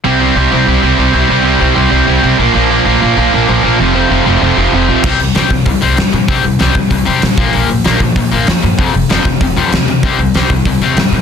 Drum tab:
CC |--------|--------|--------|--------|
HH |--------|--------|--------|--------|
SD |--------|--------|--------|--------|
BD |--------|--------|--------|--------|

CC |x-------|--------|--------|--------|
HH |-ooooooo|oooooooo|oooooooo|oooooooo|
SD |--o---o-|--o---o-|--o---o-|--o---o-|
BD |o--oo---|o--oo--o|---oo---|o--oo---|

CC |--------|
HH |oooooooo|
SD |--o---o-|
BD |o--oo---|